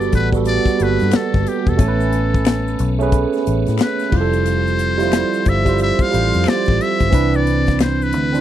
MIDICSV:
0, 0, Header, 1, 7, 480
1, 0, Start_track
1, 0, Tempo, 666667
1, 1292, Time_signature, 4, 2, 24, 8
1, 6052, End_track
2, 0, Start_track
2, 0, Title_t, "Muted trumpet"
2, 0, Program_c, 0, 59
2, 0, Note_on_c, 0, 74, 101
2, 101, Note_off_c, 0, 74, 0
2, 109, Note_on_c, 0, 71, 93
2, 213, Note_off_c, 0, 71, 0
2, 343, Note_on_c, 0, 74, 102
2, 595, Note_on_c, 0, 71, 93
2, 606, Note_off_c, 0, 74, 0
2, 835, Note_on_c, 0, 69, 82
2, 845, Note_off_c, 0, 71, 0
2, 1065, Note_on_c, 0, 67, 80
2, 1076, Note_off_c, 0, 69, 0
2, 1216, Note_on_c, 0, 69, 79
2, 1227, Note_off_c, 0, 67, 0
2, 2169, Note_off_c, 0, 69, 0
2, 2750, Note_on_c, 0, 71, 89
2, 3000, Note_on_c, 0, 72, 104
2, 3011, Note_off_c, 0, 71, 0
2, 3950, Note_on_c, 0, 76, 103
2, 3961, Note_off_c, 0, 72, 0
2, 4181, Note_off_c, 0, 76, 0
2, 4191, Note_on_c, 0, 76, 104
2, 4330, Note_on_c, 0, 77, 109
2, 4341, Note_off_c, 0, 76, 0
2, 4670, Note_on_c, 0, 74, 103
2, 4681, Note_off_c, 0, 77, 0
2, 4909, Note_on_c, 0, 76, 107
2, 4919, Note_off_c, 0, 74, 0
2, 5298, Note_on_c, 0, 74, 96
2, 5308, Note_off_c, 0, 76, 0
2, 5619, Note_off_c, 0, 74, 0
2, 5629, Note_on_c, 0, 72, 90
2, 5782, Note_on_c, 0, 71, 101
2, 5792, Note_off_c, 0, 72, 0
2, 6052, Note_off_c, 0, 71, 0
2, 6052, End_track
3, 0, Start_track
3, 0, Title_t, "Tine electric piano"
3, 0, Program_c, 1, 4
3, 0, Control_c, 1, 64, 127
3, 0, Note_on_c, 1, 55, 84
3, 0, Note_on_c, 1, 59, 73
3, 0, Note_on_c, 1, 66, 73
3, 0, Note_on_c, 1, 69, 88
3, 122, Note_off_c, 1, 55, 0
3, 127, Note_off_c, 1, 59, 0
3, 132, Note_off_c, 1, 66, 0
3, 138, Note_off_c, 1, 69, 0
3, 233, Note_on_c, 1, 55, 71
3, 239, Note_on_c, 1, 59, 68
3, 251, Note_on_c, 1, 66, 64
3, 262, Note_on_c, 1, 69, 74
3, 515, Note_off_c, 1, 55, 0
3, 517, Note_off_c, 1, 59, 0
3, 524, Note_off_c, 1, 66, 0
3, 529, Note_off_c, 1, 69, 0
3, 563, Note_on_c, 1, 55, 67
3, 573, Note_on_c, 1, 58, 51
3, 587, Note_on_c, 1, 66, 63
3, 593, Note_on_c, 1, 69, 72
3, 621, Note_on_c, 1, 59, 64
3, 631, Note_off_c, 1, 58, 0
3, 1172, Note_off_c, 1, 55, 0
3, 1184, Note_off_c, 1, 66, 0
3, 1187, Note_off_c, 1, 69, 0
3, 1201, Note_off_c, 1, 59, 0
3, 1276, Note_on_c, 1, 57, 95
3, 1282, Note_on_c, 1, 61, 84
3, 1295, Note_on_c, 1, 80, 84
3, 1300, Control_c, 1, 64, 0
3, 1308, Note_on_c, 1, 69, 85
3, 1353, Note_on_c, 1, 71, 100
3, 1358, Note_off_c, 1, 69, 0
3, 1435, Control_c, 1, 64, 127
3, 1971, Note_off_c, 1, 57, 0
3, 1974, Note_off_c, 1, 61, 0
3, 1981, Note_off_c, 1, 80, 0
3, 2010, Note_off_c, 1, 71, 0
3, 2151, Note_on_c, 1, 57, 90
3, 2160, Note_on_c, 1, 61, 85
3, 2170, Note_on_c, 1, 68, 77
3, 2178, Note_on_c, 1, 71, 102
3, 2822, Note_off_c, 1, 57, 0
3, 2826, Note_off_c, 1, 61, 0
3, 2831, Note_off_c, 1, 68, 0
3, 2835, Note_off_c, 1, 71, 0
3, 2951, Note_on_c, 1, 55, 69
3, 2962, Note_on_c, 1, 64, 63
3, 2971, Note_on_c, 1, 65, 67
3, 2980, Control_c, 1, 64, 0
3, 2980, Note_on_c, 1, 67, 67
3, 3029, Note_on_c, 1, 69, 83
3, 3034, Note_off_c, 1, 67, 0
3, 3098, Control_c, 1, 64, 127
3, 3445, Note_off_c, 1, 55, 0
3, 3451, Note_off_c, 1, 64, 0
3, 3455, Note_off_c, 1, 65, 0
3, 3484, Note_off_c, 1, 69, 0
3, 3583, Note_on_c, 1, 55, 84
3, 3593, Note_on_c, 1, 64, 78
3, 3605, Note_on_c, 1, 65, 76
3, 3618, Note_on_c, 1, 72, 93
3, 3955, Note_off_c, 1, 55, 0
3, 3960, Note_off_c, 1, 64, 0
3, 3966, Note_off_c, 1, 65, 0
3, 3973, Note_off_c, 1, 72, 0
3, 4065, Note_on_c, 1, 55, 71
3, 4077, Note_on_c, 1, 64, 66
3, 4088, Note_on_c, 1, 65, 67
3, 4097, Note_on_c, 1, 72, 87
3, 4351, Note_off_c, 1, 55, 0
3, 4357, Note_off_c, 1, 64, 0
3, 4362, Note_off_c, 1, 65, 0
3, 4367, Note_off_c, 1, 72, 0
3, 4392, Note_on_c, 1, 55, 69
3, 4406, Note_on_c, 1, 67, 60
3, 4414, Note_on_c, 1, 65, 62
3, 4426, Note_on_c, 1, 72, 79
3, 5007, Note_off_c, 1, 55, 0
3, 5014, Note_off_c, 1, 67, 0
3, 5018, Note_off_c, 1, 65, 0
3, 5024, Note_off_c, 1, 72, 0
3, 5114, Note_on_c, 1, 52, 93
3, 5125, Note_on_c, 1, 60, 88
3, 5134, Note_on_c, 1, 62, 87
3, 5142, Control_c, 1, 64, 0
3, 5144, Note_on_c, 1, 71, 105
3, 5269, Control_c, 1, 64, 127
3, 5810, Note_off_c, 1, 52, 0
3, 5815, Note_off_c, 1, 60, 0
3, 5820, Note_off_c, 1, 62, 0
3, 5825, Note_off_c, 1, 71, 0
3, 5981, Note_on_c, 1, 50, 55
3, 5993, Note_on_c, 1, 60, 68
3, 6005, Note_on_c, 1, 62, 67
3, 6016, Note_on_c, 1, 72, 76
3, 6026, Note_off_c, 1, 50, 0
3, 6030, Note_on_c, 1, 52, 69
3, 6052, Note_off_c, 1, 52, 0
3, 6052, Note_off_c, 1, 60, 0
3, 6052, Note_off_c, 1, 62, 0
3, 6052, Note_off_c, 1, 72, 0
3, 6052, End_track
4, 0, Start_track
4, 0, Title_t, "Tonewheel organ"
4, 0, Program_c, 2, 16
4, 0, Note_on_c, 2, 55, 70
4, 0, Note_on_c, 2, 66, 60
4, 0, Note_on_c, 2, 69, 60
4, 0, Note_on_c, 2, 71, 66
4, 1270, Note_off_c, 2, 69, 0
4, 1271, Note_off_c, 2, 66, 0
4, 1272, Note_off_c, 2, 55, 0
4, 1272, Note_off_c, 2, 71, 0
4, 1292, Note_on_c, 2, 57, 62
4, 1292, Note_on_c, 2, 61, 74
4, 1296, Note_on_c, 2, 59, 65
4, 2955, Note_off_c, 2, 57, 0
4, 2955, Note_off_c, 2, 61, 0
4, 2957, Note_off_c, 2, 59, 0
4, 2962, Note_on_c, 2, 69, 73
4, 2963, Note_on_c, 2, 53, 65
4, 2969, Note_on_c, 2, 60, 61
4, 2970, Note_on_c, 2, 67, 60
4, 5105, Note_off_c, 2, 53, 0
4, 5105, Note_off_c, 2, 69, 0
4, 5109, Note_off_c, 2, 67, 0
4, 5125, Note_on_c, 2, 62, 63
4, 5126, Note_on_c, 2, 48, 65
4, 5128, Note_on_c, 2, 55, 60
4, 6052, Note_off_c, 2, 48, 0
4, 6052, Note_off_c, 2, 55, 0
4, 6052, Note_off_c, 2, 60, 0
4, 6052, Note_off_c, 2, 62, 0
4, 6052, End_track
5, 0, Start_track
5, 0, Title_t, "Fingered electric bass"
5, 0, Program_c, 3, 33
5, 97, Note_on_c, 3, 33, 84
5, 415, Note_off_c, 3, 33, 0
5, 580, Note_on_c, 3, 31, 76
5, 699, Note_off_c, 3, 31, 0
5, 734, Note_on_c, 3, 43, 98
5, 803, Note_off_c, 3, 43, 0
5, 966, Note_on_c, 3, 31, 83
5, 1038, Note_off_c, 3, 31, 0
5, 1202, Note_on_c, 3, 28, 78
5, 1276, Note_off_c, 3, 28, 0
5, 1291, Note_on_c, 3, 33, 105
5, 1982, Note_off_c, 3, 33, 0
5, 2016, Note_on_c, 3, 35, 89
5, 2334, Note_off_c, 3, 35, 0
5, 2501, Note_on_c, 3, 33, 82
5, 2620, Note_off_c, 3, 33, 0
5, 2650, Note_on_c, 3, 45, 99
5, 2720, Note_off_c, 3, 45, 0
5, 2974, Note_on_c, 3, 29, 90
5, 3760, Note_off_c, 3, 29, 0
5, 3935, Note_on_c, 3, 31, 81
5, 4253, Note_off_c, 3, 31, 0
5, 4420, Note_on_c, 3, 33, 90
5, 4540, Note_off_c, 3, 33, 0
5, 4573, Note_on_c, 3, 41, 93
5, 4642, Note_off_c, 3, 41, 0
5, 4814, Note_on_c, 3, 33, 87
5, 4882, Note_off_c, 3, 33, 0
5, 5050, Note_on_c, 3, 31, 75
5, 5120, Note_off_c, 3, 31, 0
5, 5134, Note_on_c, 3, 36, 108
5, 5858, Note_off_c, 3, 36, 0
5, 5858, Note_on_c, 3, 38, 84
5, 6052, Note_off_c, 3, 38, 0
5, 6052, End_track
6, 0, Start_track
6, 0, Title_t, "Muted fingered electric bass strokes"
6, 821, Note_on_c, 9, 29, 47
6, 893, Note_off_c, 9, 29, 0
6, 4658, Note_on_c, 9, 29, 50
6, 4730, Note_off_c, 9, 29, 0
6, 6052, End_track
7, 0, Start_track
7, 0, Title_t, "Drums"
7, 9, Note_on_c, 9, 82, 45
7, 81, Note_off_c, 9, 82, 0
7, 90, Note_on_c, 9, 42, 65
7, 94, Note_on_c, 9, 36, 87
7, 103, Note_on_c, 9, 82, 45
7, 162, Note_off_c, 9, 42, 0
7, 166, Note_off_c, 9, 36, 0
7, 175, Note_off_c, 9, 82, 0
7, 234, Note_on_c, 9, 36, 82
7, 243, Note_on_c, 9, 82, 48
7, 306, Note_off_c, 9, 36, 0
7, 315, Note_off_c, 9, 82, 0
7, 325, Note_on_c, 9, 82, 65
7, 328, Note_on_c, 9, 42, 73
7, 397, Note_off_c, 9, 82, 0
7, 400, Note_off_c, 9, 42, 0
7, 472, Note_on_c, 9, 36, 85
7, 479, Note_on_c, 9, 82, 49
7, 500, Note_on_c, 9, 38, 38
7, 544, Note_off_c, 9, 36, 0
7, 551, Note_off_c, 9, 82, 0
7, 572, Note_off_c, 9, 38, 0
7, 575, Note_on_c, 9, 42, 63
7, 575, Note_on_c, 9, 82, 50
7, 647, Note_off_c, 9, 42, 0
7, 647, Note_off_c, 9, 82, 0
7, 717, Note_on_c, 9, 42, 35
7, 728, Note_on_c, 9, 82, 49
7, 789, Note_off_c, 9, 42, 0
7, 800, Note_off_c, 9, 82, 0
7, 802, Note_on_c, 9, 42, 84
7, 805, Note_on_c, 9, 26, 68
7, 805, Note_on_c, 9, 82, 69
7, 817, Note_on_c, 9, 38, 112
7, 874, Note_off_c, 9, 42, 0
7, 877, Note_off_c, 9, 26, 0
7, 877, Note_off_c, 9, 82, 0
7, 889, Note_off_c, 9, 38, 0
7, 962, Note_on_c, 9, 82, 46
7, 966, Note_on_c, 9, 36, 85
7, 972, Note_on_c, 9, 38, 34
7, 1034, Note_off_c, 9, 82, 0
7, 1038, Note_off_c, 9, 36, 0
7, 1044, Note_off_c, 9, 38, 0
7, 1055, Note_on_c, 9, 42, 57
7, 1127, Note_off_c, 9, 42, 0
7, 1199, Note_on_c, 9, 82, 46
7, 1200, Note_on_c, 9, 36, 86
7, 1271, Note_off_c, 9, 82, 0
7, 1272, Note_off_c, 9, 36, 0
7, 1287, Note_on_c, 9, 42, 90
7, 1289, Note_on_c, 9, 36, 122
7, 1294, Note_on_c, 9, 82, 62
7, 1359, Note_off_c, 9, 42, 0
7, 1361, Note_off_c, 9, 36, 0
7, 1366, Note_off_c, 9, 82, 0
7, 1443, Note_on_c, 9, 82, 46
7, 1515, Note_off_c, 9, 82, 0
7, 1531, Note_on_c, 9, 42, 60
7, 1603, Note_off_c, 9, 42, 0
7, 1688, Note_on_c, 9, 36, 90
7, 1694, Note_on_c, 9, 82, 49
7, 1760, Note_off_c, 9, 36, 0
7, 1765, Note_off_c, 9, 82, 0
7, 1765, Note_on_c, 9, 26, 69
7, 1765, Note_on_c, 9, 82, 74
7, 1775, Note_on_c, 9, 42, 98
7, 1776, Note_on_c, 9, 38, 106
7, 1837, Note_off_c, 9, 26, 0
7, 1837, Note_off_c, 9, 82, 0
7, 1847, Note_off_c, 9, 42, 0
7, 1848, Note_off_c, 9, 38, 0
7, 1926, Note_on_c, 9, 82, 49
7, 1998, Note_off_c, 9, 82, 0
7, 2008, Note_on_c, 9, 42, 66
7, 2019, Note_on_c, 9, 82, 48
7, 2080, Note_off_c, 9, 42, 0
7, 2091, Note_off_c, 9, 82, 0
7, 2163, Note_on_c, 9, 82, 49
7, 2235, Note_off_c, 9, 82, 0
7, 2247, Note_on_c, 9, 82, 67
7, 2248, Note_on_c, 9, 36, 91
7, 2248, Note_on_c, 9, 42, 72
7, 2319, Note_off_c, 9, 82, 0
7, 2320, Note_off_c, 9, 36, 0
7, 2320, Note_off_c, 9, 42, 0
7, 2397, Note_on_c, 9, 82, 47
7, 2422, Note_on_c, 9, 38, 36
7, 2469, Note_off_c, 9, 82, 0
7, 2493, Note_on_c, 9, 82, 54
7, 2494, Note_off_c, 9, 38, 0
7, 2497, Note_on_c, 9, 42, 62
7, 2565, Note_off_c, 9, 82, 0
7, 2569, Note_off_c, 9, 42, 0
7, 2639, Note_on_c, 9, 42, 33
7, 2647, Note_on_c, 9, 82, 50
7, 2651, Note_on_c, 9, 38, 31
7, 2711, Note_off_c, 9, 42, 0
7, 2719, Note_off_c, 9, 82, 0
7, 2719, Note_on_c, 9, 26, 62
7, 2719, Note_on_c, 9, 82, 67
7, 2723, Note_off_c, 9, 38, 0
7, 2726, Note_on_c, 9, 42, 82
7, 2742, Note_on_c, 9, 38, 108
7, 2791, Note_off_c, 9, 26, 0
7, 2791, Note_off_c, 9, 82, 0
7, 2798, Note_off_c, 9, 42, 0
7, 2814, Note_off_c, 9, 38, 0
7, 2875, Note_on_c, 9, 82, 45
7, 2899, Note_on_c, 9, 38, 34
7, 2947, Note_off_c, 9, 82, 0
7, 2968, Note_on_c, 9, 49, 68
7, 2969, Note_on_c, 9, 36, 94
7, 2971, Note_off_c, 9, 38, 0
7, 3040, Note_off_c, 9, 49, 0
7, 3041, Note_off_c, 9, 36, 0
7, 3118, Note_on_c, 9, 82, 46
7, 3120, Note_on_c, 9, 42, 35
7, 3190, Note_off_c, 9, 82, 0
7, 3192, Note_off_c, 9, 42, 0
7, 3209, Note_on_c, 9, 42, 90
7, 3213, Note_on_c, 9, 82, 66
7, 3281, Note_off_c, 9, 42, 0
7, 3285, Note_off_c, 9, 82, 0
7, 3363, Note_on_c, 9, 82, 44
7, 3435, Note_off_c, 9, 82, 0
7, 3449, Note_on_c, 9, 42, 61
7, 3521, Note_off_c, 9, 42, 0
7, 3597, Note_on_c, 9, 42, 37
7, 3613, Note_on_c, 9, 82, 50
7, 3616, Note_on_c, 9, 38, 36
7, 3669, Note_off_c, 9, 42, 0
7, 3685, Note_off_c, 9, 82, 0
7, 3685, Note_on_c, 9, 26, 67
7, 3685, Note_on_c, 9, 82, 75
7, 3688, Note_off_c, 9, 38, 0
7, 3693, Note_on_c, 9, 42, 102
7, 3694, Note_on_c, 9, 38, 102
7, 3757, Note_off_c, 9, 26, 0
7, 3757, Note_off_c, 9, 82, 0
7, 3765, Note_off_c, 9, 42, 0
7, 3766, Note_off_c, 9, 38, 0
7, 3841, Note_on_c, 9, 82, 48
7, 3913, Note_off_c, 9, 82, 0
7, 3928, Note_on_c, 9, 42, 63
7, 3933, Note_on_c, 9, 36, 87
7, 3942, Note_on_c, 9, 82, 50
7, 4000, Note_off_c, 9, 42, 0
7, 4005, Note_off_c, 9, 36, 0
7, 4014, Note_off_c, 9, 82, 0
7, 4075, Note_on_c, 9, 36, 77
7, 4077, Note_on_c, 9, 82, 51
7, 4081, Note_on_c, 9, 42, 33
7, 4147, Note_off_c, 9, 36, 0
7, 4149, Note_off_c, 9, 82, 0
7, 4153, Note_off_c, 9, 42, 0
7, 4161, Note_on_c, 9, 82, 65
7, 4173, Note_on_c, 9, 42, 73
7, 4233, Note_off_c, 9, 82, 0
7, 4245, Note_off_c, 9, 42, 0
7, 4313, Note_on_c, 9, 36, 91
7, 4313, Note_on_c, 9, 82, 52
7, 4342, Note_on_c, 9, 38, 35
7, 4385, Note_off_c, 9, 36, 0
7, 4385, Note_off_c, 9, 82, 0
7, 4408, Note_on_c, 9, 82, 55
7, 4414, Note_off_c, 9, 38, 0
7, 4422, Note_on_c, 9, 42, 62
7, 4480, Note_off_c, 9, 82, 0
7, 4494, Note_off_c, 9, 42, 0
7, 4563, Note_on_c, 9, 82, 47
7, 4564, Note_on_c, 9, 42, 35
7, 4576, Note_on_c, 9, 38, 34
7, 4635, Note_off_c, 9, 82, 0
7, 4636, Note_off_c, 9, 42, 0
7, 4637, Note_on_c, 9, 26, 67
7, 4637, Note_on_c, 9, 82, 63
7, 4648, Note_off_c, 9, 38, 0
7, 4653, Note_on_c, 9, 42, 75
7, 4668, Note_on_c, 9, 38, 105
7, 4709, Note_off_c, 9, 26, 0
7, 4709, Note_off_c, 9, 82, 0
7, 4725, Note_off_c, 9, 42, 0
7, 4740, Note_off_c, 9, 38, 0
7, 4791, Note_on_c, 9, 82, 45
7, 4811, Note_on_c, 9, 36, 82
7, 4821, Note_on_c, 9, 38, 35
7, 4863, Note_off_c, 9, 82, 0
7, 4883, Note_off_c, 9, 36, 0
7, 4893, Note_off_c, 9, 38, 0
7, 4903, Note_on_c, 9, 42, 54
7, 4975, Note_off_c, 9, 42, 0
7, 5034, Note_on_c, 9, 82, 44
7, 5043, Note_on_c, 9, 42, 37
7, 5044, Note_on_c, 9, 36, 83
7, 5106, Note_off_c, 9, 82, 0
7, 5115, Note_off_c, 9, 42, 0
7, 5116, Note_off_c, 9, 36, 0
7, 5128, Note_on_c, 9, 82, 67
7, 5131, Note_on_c, 9, 36, 118
7, 5134, Note_on_c, 9, 42, 94
7, 5200, Note_off_c, 9, 82, 0
7, 5203, Note_off_c, 9, 36, 0
7, 5206, Note_off_c, 9, 42, 0
7, 5282, Note_on_c, 9, 82, 46
7, 5354, Note_off_c, 9, 82, 0
7, 5377, Note_on_c, 9, 42, 61
7, 5449, Note_off_c, 9, 42, 0
7, 5522, Note_on_c, 9, 42, 36
7, 5531, Note_on_c, 9, 36, 90
7, 5533, Note_on_c, 9, 82, 47
7, 5541, Note_on_c, 9, 38, 37
7, 5594, Note_off_c, 9, 42, 0
7, 5603, Note_off_c, 9, 36, 0
7, 5605, Note_off_c, 9, 82, 0
7, 5609, Note_on_c, 9, 26, 70
7, 5609, Note_on_c, 9, 82, 70
7, 5613, Note_off_c, 9, 38, 0
7, 5620, Note_on_c, 9, 38, 104
7, 5620, Note_on_c, 9, 42, 97
7, 5681, Note_off_c, 9, 26, 0
7, 5681, Note_off_c, 9, 82, 0
7, 5692, Note_off_c, 9, 38, 0
7, 5692, Note_off_c, 9, 42, 0
7, 5771, Note_on_c, 9, 82, 49
7, 5843, Note_off_c, 9, 82, 0
7, 5851, Note_on_c, 9, 42, 68
7, 5868, Note_on_c, 9, 82, 50
7, 5923, Note_off_c, 9, 42, 0
7, 5940, Note_off_c, 9, 82, 0
7, 6007, Note_on_c, 9, 82, 50
7, 6052, Note_off_c, 9, 82, 0
7, 6052, End_track
0, 0, End_of_file